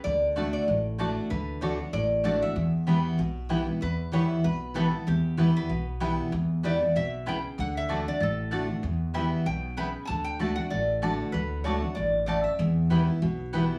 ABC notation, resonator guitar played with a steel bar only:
X:1
M:4/4
L:1/16
Q:"Swing" 1/4=191
K:Edor
V:1 name="Resonator guitar played with a steel bar"
d6 d4 z6 | B4 c4 d4 d2 e2- | e12 z4 | B4 c4 B4 A4 |
G6 B4 z6 | z4 d4 e4 g4 | f2 e4 d2 A6 z2 | z4 e4 g4 b3- b/2 ^g/2 |
a2 g4 f2 d6 z2 | B4 c4 d4 d2 e2- | e12 z4 |]